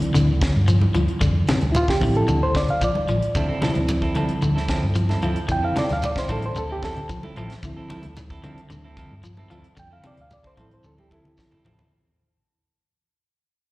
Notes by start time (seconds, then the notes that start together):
Already playing: F3 C4 E4 D5
0.02 muted fingered electric bass stroke, closed hi-hat
0.14 D2 D3, closed hi-hat, shekere
0.41 kick, snare, closed hi-hat, shekere
0.56 G2
0.68 F3, closed hi-hat, shekere
0.81 high conga
0.94 D2 F3, closed hi-hat, high conga, shekere
1.08 closed hi-hat
1.21 F2 D3, kick, closed hi-hat, shekere
1.47 C3, muted fingered electric bass stroke, snare, closed hi-hat, high conga, shekere
1.61 D2, closed hi-hat, high conga
1.72 E4, closed hi-hat, high conga, shekere
1.76 F4
1.88 G4, kick, snare
2.00 A1 D3 F3 C4 E4, kick, open hi-hat, high conga, shekere
2.15 A4, closed hi-hat
2.28 D2 D3, closed hi-hat, high conga, shekere
2.43 C5
2.55 D5, kick, snare, closed hi-hat, shekere
2.68 D3 F5, closed hi-hat
2.81 F3 D5, kick, closed hi-hat, shekere
2.95 high conga
3.08 A1 F3, closed hi-hat, shekere
3.22 closed hi-hat
3.35 D2 D3 F3 C4 E4 A4, kick, closed hi-hat, shekere
3.48 C4 E4 A4
3.61 C3 F3 C4 E4 A4, muted fingered electric bass stroke, snare, closed hi-hat, high conga, shekere
3.75 D2, closed hi-hat, high conga
3.89 closed hi-hat, high conga, shekere
4.02 C4 E4 A4, kick
4.15 D3 F3 C4 E4 A4, closed hi-hat, high conga, shekere
4.29 muted fingered electric bass stroke, closed hi-hat
4.42 D2 D3, closed hi-hat, high conga, shekere
4.56 C4 E4 A4, snare
4.68 F3 C4 E4 A4, kick, snare, closed hi-hat, shekere
4.83 G2
4.95 F3, closed hi-hat, shekere
5.09 C4 E4 A4, snare, high conga
5.22 D2 F3 C4 E4 A4, closed hi-hat, high conga, shekere
5.36 closed hi-hat
5.48 F2 D3 F3 C4 E4 G5, kick, closed hi-hat, shekere
5.62 C4 E4 A4 F5
5.75 C3 F3 C4 E4 A4 D5, muted fingered electric bass stroke, snare, closed hi-hat, high conga, shekere
5.89 D2 F5, snare, closed hi-hat, high conga
6.02 D5, closed hi-hat, high conga, shekere
6.16 C4 E4 C5, kick, snare
6.28 A1 D3 F3 C4 E4 A4, kick, closed hi-hat, high conga, shekere
6.42 C5, closed hi-hat
6.56 D2 D3 A4, closed hi-hat, shekere
6.69 C4 E4 G4 A4
6.83 F3 C4 E4 A4, kick, snare, closed hi-hat, shekere
6.96 D3, closed hi-hat
7.09 F3, kick, closed hi-hat, shekere
7.23 C4 E4 A4, high conga
7.36 A1 F3 C4 E4 A4, closed hi-hat, shekere
7.50 snare, closed hi-hat
7.63 D2 D3 F3 C4 E4, kick, closed hi-hat, shekere
7.77 C4 E4 A4
7.90 F3 E4 A4, muted clean electric guitar stroke, muted fingered electric bass stroke, closed hi-hat, high conga, shekere
8.03 D2, closed hi-hat, high conga
8.17 closed hi-hat, high conga, shekere
8.30 C4 E4 A4, kick
8.43 D3 F3 C4 E4 A4, closed hi-hat, high conga, shekere
8.58 muted fingered electric bass stroke, closed hi-hat
8.70 D2 D3, closed hi-hat, high conga, shekere
8.84 C4 E4 A4
8.97 F3 C4 E4 A4, kick, closed hi-hat, shekere
9.11 G2
9.23 F3, closed hi-hat, shekere
9.37 C4 E4 A4, high conga
9.50 D2 F3 C4 E4 A4, closed hi-hat, shekere
9.64 closed hi-hat
9.77 F2 D3 G5, kick, closed hi-hat, shekere
9.91 C4 E4 A4 F5
10.04 C3 F3 C4 E4 A4 D5, closed hi-hat, high conga, shekere
10.17 D2, closed hi-hat
10.21 F5
10.31 D5, closed hi-hat, high conga, shekere
10.44 C4 E4 A4 C5, kick
10.57 A1 D3 F3 C4 E4 A4, kick, closed hi-hat, high conga, shekere
10.71 C5, closed hi-hat
10.84 D2 D3 A4, high tom, high conga, shekere
10.97 C4 E4 G4 A4, high conga
11.10 F3 E4 A4, kick, high conga, shekere
11.24 D3, low conga
11.37 F3, kick, snare, shekere
11.51 C4 E4 A4, mid tom, low conga
11.64 A1 F3 C4 E4 A4, floor tom, low conga, shekere
11.79 floor tom, low conga